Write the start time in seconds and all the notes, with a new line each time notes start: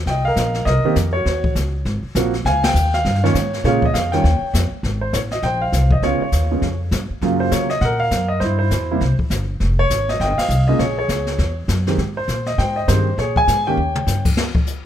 0.06 C2 D#5 G5, brush sweep, kick, snare
0.25 A#4 F5
0.36 A#1, kick, snare, hi-hat pedal
0.54 snare
0.65 C2 A#4 D#5, brush sweep, kick, snare
0.84 D#3 A#3 C4 G4, muted upright bass stroke
0.96 F2, kick, snare, hi-hat pedal
1.13 F#4 C#5
1.25 D#2, brush sweep, kick, snare
1.44 kick
1.55 C#2, kick, snare, hi-hat pedal
1.85 G#1, brush sweep, kick, snare
2.03 muted upright bass stroke
2.15 A#1 F3 A#3 C4 F#4, kick, snare, hi-hat pedal
2.34 snare
2.45 C#2 F5 G#5, brush sweep, kick, snare
2.64 G5, snare, ride
2.74 D#2, hi-hat pedal
2.93 F5, snare
3.05 G2, brush sweep, kick, snare
3.15 snare
3.24 D#3 A#3 C#4 F4 C#5, snare
3.34 G#2, kick, snare, hi-hat pedal
3.53 snare
3.64 A#2 C#3 G#3 A#3 F4 G#4 C#5, brush sweep, kick, snare
3.82 D#5, kick
3.94 F2 F5, kick, snare, hi-hat pedal
4.12 D#3 G3 C#4 F4 C#5 G5, snare
4.24 D#2, brush sweep, kick, snare
4.41 muted upright bass stroke
4.54 F2, kick, snare, hi-hat pedal
4.72 muted upright bass stroke
4.83 G#1, brush sweep, kick, snare
5.01 C5
5.13 A1 C#5, kick, snare, hi-hat pedal
5.31 D#5, snare
5.42 A#1 C5 G5, brush sweep, kick, snare
5.62 F5
5.72 C2, kick, snare, hi-hat pedal
5.91 D#5, kick
6.02 C#2 C#3 G#3 B3 F4 C#5, brush sweep, kick, snare
6.20 F4 C#5, muted upright bass stroke
6.32 D#2, kick, snare, hi-hat pedal
6.51 C#3 G#3 B3 F4
6.62 F2, brush sweep, kick, snare
6.91 G2, kick, snare, hi-hat pedal
7.10 muted upright bass stroke
7.21 F#2 C#3 F#3 A#3 F4, brush sweep, kick, snare
7.40 C5
7.51 C#3 C#5, kick, snare, hi-hat pedal
7.70 D#5, snare
7.81 A#2 A#4 F#5, brush sweep, kick, snare
8.00 F5
8.11 F#2, kick, snare, hi-hat pedal
8.28 D#5
8.40 G2 C5, brush sweep, kick, snare
8.44 E4
8.59 E4 C5
8.71 E2, kick, snare, hi-hat pedal
8.91 C3 G3 A#3 E4
9.01 C2, brush sweep, kick, snare
9.19 muted upright bass stroke, kick
9.30 G1, kick, snare, hi-hat pedal
9.60 F1, brush sweep, kick, snare
9.79 C#5
9.90 G#1, kick, snare, hi-hat pedal
10.09 D#5, snare
10.20 G1 D#5 G5, brush sweep, kick, snare
10.38 F5, muted upright bass stroke, snare, ride
10.49 C2, hi-hat pedal
10.68 C#3 G#3 A#3 F4 D#5
10.79 A#1 G#4 C#5, brush sweep, kick, snare
10.99 G#4 C#5
11.08 C#2, kick, snare, hi-hat pedal
11.27 snare
11.38 E2, brush sweep, kick, snare
11.68 F#2, kick, snare, hi-hat pedal
11.87 D#3 G#3 C4 G4, snare
11.98 G#2, brush sweep, kick, snare
12.17 C5
12.28 A#2, kick, snare, hi-hat pedal
12.46 D#5, snare
12.58 G#2 C5 G5, brush sweep, kick, snare
12.76 D#5
12.88 G2 D#3 G#3 C4 G4 C5, kick, snare, hi-hat pedal
13.18 A#2 G#4 C#5, brush sweep, kick, snare
13.36 G#5, kick
13.48 G#2, kick, snare, hi-hat pedal
13.67 D#3 A#3 C#4 G4 C#5 G5
13.77 D#2
13.95 mid tom
14.07 G2, snare, hi-hat pedal
14.25 kick, crash
14.37 snare
14.55 kick
14.66 hi-hat pedal